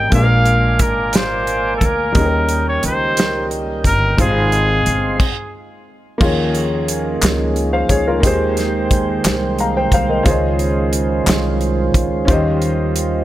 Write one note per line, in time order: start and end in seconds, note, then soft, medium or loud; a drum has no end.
0.00 0.13 D#3 soft
0.00 0.13 G3 soft
0.00 0.12 A#3 soft
0.00 0.14 C#4 soft
0.00 0.14 D#4 medium
0.00 0.13 A#4 medium
0.00 4.14 A#4 medium
0.00 0.11 G5 medium
0.10 0.80 A#1 medium
0.10 1.10 A#2 medium
0.10 2.10 G#3 medium
0.10 2.11 A#3 soft
0.10 2.12 D4 soft
0.10 2.13 F5 medium
0.10 0.83 F5 medium
0.10 2.13 G#5 medium
0.10 2.13 D6 medium
0.10 kick medium
0.10 closed hi-hat medium
0.15 2.12 F4 soft
0.15 0.21 G#4 soft
0.23 2.17 A#4 medium
0.46 closed hi-hat soft
0.79 1.77 G#1 medium
0.79 1.16 A#4 medium
0.79 kick medium
0.79 closed hi-hat medium
1.13 1.75 C5 medium
1.13 snare loud
1.13 closed hi-hat medium
1.47 closed hi-hat soft
1.77 1.87 A4 medium
1.81 2.13 D2 medium
1.81 kick medium
1.81 closed hi-hat medium
1.85 2.68 A#4 medium
2.12 2.79 D#2 medium
2.12 3.13 D#3 medium
2.12 4.13 G3 medium
2.12 4.14 A#3 soft
2.12 4.15 C#4 medium
2.12 5.17 D#5 medium
2.12 4.16 G5 medium
2.12 kick medium
2.12 closed hi-hat medium
2.17 4.15 D#4 soft
2.17 2.23 G#4 soft
2.26 4.19 A#4 medium
2.49 closed hi-hat soft
2.68 2.83 C#5 medium
2.83 3.86 C#2 medium
2.83 3.48 C5 medium
2.83 closed hi-hat medium
3.17 snare medium
3.17 closed hi-hat medium
3.51 closed hi-hat soft
3.84 4.16 G1 medium
3.84 4.22 A#4 loud
3.84 kick medium
3.84 closed hi-hat medium
4.17 4.82 G#1 medium
4.17 5.16 C3 soft
4.17 5.19 G#3 soft
4.17 5.19 C4 soft
4.17 5.20 D#4 soft
4.17 5.20 F4 soft
4.17 5.19 G#4 medium
4.17 5.55 G#4 medium
4.17 5.21 C5 medium
4.17 5.19 F5 medium
4.17 5.19 C6 medium
4.17 kick medium
4.17 closed hi-hat medium
4.52 closed hi-hat soft
4.86 5.18 G1 medium
4.86 closed hi-hat medium
5.20 kick medium
5.20 crash medium
6.18 7.18 D#2 medium
6.18 7.18 D#3 medium
6.18 8.21 F3 medium
6.18 8.18 A#3 medium
6.18 8.21 A#3 medium
6.18 8.21 C#4 medium
6.18 8.19 D#4 medium
6.18 8.21 D#4 medium
6.18 7.53 F4 medium
6.18 8.21 G#4 medium
6.18 kick medium
6.18 crash medium
6.23 7.54 G#4 medium
6.23 7.55 C#5 medium
6.55 closed hi-hat soft
6.88 closed hi-hat medium
7.22 7.86 C#2 medium
7.22 snare loud
7.22 clap medium
7.22 closed hi-hat medium
7.56 closed hi-hat soft
7.73 7.89 C5 soft
7.73 7.89 F5 medium
7.89 8.23 C#2 medium
7.89 8.06 G#4 soft
7.89 8.06 C#5 medium
7.89 kick medium
7.89 closed hi-hat medium
8.07 8.39 F4 soft
8.07 8.39 A#4 medium
8.20 9.21 D#2 medium
8.20 9.21 D#3 medium
8.20 10.24 G#3 medium
8.20 10.20 A#3 medium
8.20 10.24 A#3 medium
8.20 10.21 D#4 medium
8.20 10.22 G4 medium
8.20 13.24 C5 medium
8.20 10.24 G5 medium
8.20 kick medium
8.20 closed hi-hat medium
8.24 13.24 D#3 medium
8.24 10.23 G#4 medium
8.24 9.57 C5 medium
8.57 snare soft
8.57 closed hi-hat soft
8.91 kick medium
8.91 closed hi-hat medium
9.24 9.88 C2 medium
9.24 snare loud
9.24 clap medium
9.24 closed hi-hat medium
9.59 9.76 F5 soft
9.59 9.75 A#5 medium
9.59 closed hi-hat soft
9.77 9.92 C5 medium
9.77 9.92 G5 medium
9.92 10.23 C2 medium
9.92 10.09 C5 medium
9.92 10.09 F5 medium
9.92 kick medium
9.92 closed hi-hat medium
10.09 10.42 A#4 soft
10.09 10.28 D#5 medium
10.23 11.23 C#2 medium
10.23 11.23 C#3 medium
10.23 12.23 C#4 medium
10.23 13.24 C#4 medium
10.23 12.24 F4 medium
10.23 13.24 F4 medium
10.23 12.24 G#4 medium
10.23 kick medium
10.23 closed hi-hat medium
10.27 12.27 G#3 medium
10.27 12.25 C5 medium
10.27 12.26 D#5 medium
10.59 closed hi-hat soft
10.93 closed hi-hat medium
11.27 11.90 C2 loud
11.27 snare loud
11.27 clap medium
11.27 closed hi-hat medium
11.61 closed hi-hat soft
11.94 12.26 C#2 medium
11.94 kick medium
11.94 closed hi-hat medium
12.25 13.24 D#2 loud
12.25 13.24 D#3 medium
12.25 13.24 C#4 medium
12.25 13.24 F4 medium
12.25 13.24 G4 medium
12.25 kick loud
12.25 closed hi-hat medium
12.30 13.24 G3 medium
12.30 13.24 C5 medium
12.30 13.24 D#5 medium
12.62 closed hi-hat soft
12.96 closed hi-hat medium